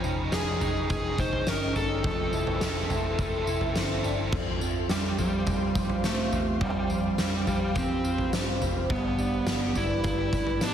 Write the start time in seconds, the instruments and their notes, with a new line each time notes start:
Already playing: clean electric guitar F3, ambient pad G#4 D#5 G5 C#6
0.03 picked electric bass F1, clean electric guitar D#4, overdriven electric guitar D#4 G#4, tambourine
0.08 overdriven electric guitar C#4
0.32 picked electric bass F1, overdriven electric guitar F3 C#4 D#4, clean electric guitar G#4, electric slide guitar G#4, snare, tambourine
0.37 overdriven electric guitar G#4
0.60 picked electric bass F1, clean electric guitar D#4, overdriven electric guitar D#4 G#4, floor tom, tambourine
0.65 overdriven electric guitar C#4
0.89 picked electric bass F1, overdriven electric guitar F3 C#4 D#4 G#4, electric slide guitar G#4, kick, floor tom, tambourine
1.17 picked electric bass F1, clean electric guitar D#4, overdriven electric guitar D#4 G#4, electric slide guitar C5, kick, tambourine
1.22 overdriven electric guitar C#4
1.33 floor tom
1.46 picked electric bass G1, overdriven electric guitar F3 C#4 D#4, clean electric guitar C#4, electric slide guitar A#4, snare, tambourine
1.51 overdriven electric guitar G#4
1.74 picked electric bass G1, clean electric guitar D#4, overdriven electric guitar D#4 G#4, electric slide guitar A4, floor tom, tambourine
1.79 overdriven electric guitar C#4
2.04 picked electric bass F1, overdriven electric guitar F3 C4 E4 A4, clean electric guitar F3, ambient pad A4 E5 C6, kick, floor tom
2.32 picked electric bass F1, clean electric guitar E4, overdriven electric guitar E4 A4, tambourine
2.37 overdriven electric guitar C4
2.47 floor tom
2.60 picked electric bass F1, overdriven electric guitar F3 C4 E4, clean electric guitar A4, snare, tambourine
2.66 overdriven electric guitar A4
2.89 picked electric bass F1, clean electric guitar E4, overdriven electric guitar E4 A4, floor tom, tambourine
2.94 overdriven electric guitar C4
3.18 picked electric bass F1, overdriven electric guitar F3 C4 E4 A4, clean electric guitar A4, kick, floor tom, tambourine
3.46 picked electric bass F1, clean electric guitar E4, overdriven electric guitar E4 A4, tambourine
3.51 overdriven electric guitar C4
3.61 floor tom
3.74 picked electric bass G1, overdriven electric guitar F3 C4 E4, clean electric guitar C4, snare, tambourine
3.79 overdriven electric guitar A4
4.03 picked electric bass G1, clean electric guitar D4, overdriven electric guitar E4 A4, tambourine
4.08 overdriven electric guitar C4
4.18 clean electric guitar E4
4.32 picked electric bass F2, clean electric guitar F3, ambient pad G4 C5 F5 C6, kick, floor tom, crash
4.61 picked electric bass F2, clean electric guitar F4, tambourine
4.89 picked electric bass F2, electric slide guitar G3, clean electric guitar G4, snare, tambourine
5.18 picked electric bass F2, electric slide guitar G3, clean electric guitar F4, floor tom, tambourine
5.47 picked electric bass F2, clean electric guitar G4, kick, floor tom, tambourine
5.75 picked electric bass F2, clean electric guitar F4, kick, tambourine
5.89 floor tom
6.04 picked electric bass G2, electric slide guitar A3, clean electric guitar C4, snare, tambourine
6.32 picked electric bass E2, clean electric guitar F4, floor tom, tambourine
6.61 picked electric bass F2, clean electric guitar F3, electric slide guitar G3, ambient pad B5, kick, floor tom
6.90 picked electric bass F2, clean electric guitar F4, tambourine
7.18 picked electric bass F2, electric slide guitar G3, clean electric guitar G4, snare, tambourine
7.47 picked electric bass F2, electric slide guitar G3, clean electric guitar F4, floor tom, tambourine
7.75 picked electric bass F2, electric slide guitar C4, clean electric guitar G4, kick, floor tom, tambourine
8.04 picked electric bass F2, clean electric guitar F4, tambourine
8.18 floor tom
8.32 picked electric bass G2, clean electric guitar C4, snare, tambourine
8.61 picked electric bass F1, clean electric guitar F4, floor tom, tambourine
8.90 picked electric bass G1, clean electric guitar G2, electric slide guitar B3, ambient pad B4 D5, kick, floor tom
9.18 picked electric bass G1, clean electric guitar D4, tambourine
9.46 picked electric bass G1, clean electric guitar F4, snare, tambourine
9.61 clean electric guitar G4
9.75 picked electric bass G1, clean electric guitar D4, electric slide guitar E4, floor tom, tambourine
10.04 picked electric bass G1, clean electric guitar F4, kick, floor tom, tambourine
10.18 clean electric guitar G4
10.33 picked electric bass G1, clean electric guitar D4, kick, tambourine
10.47 floor tom
10.61 picked electric bass A1, clean electric guitar B3, electric slide guitar D4, snare, tambourine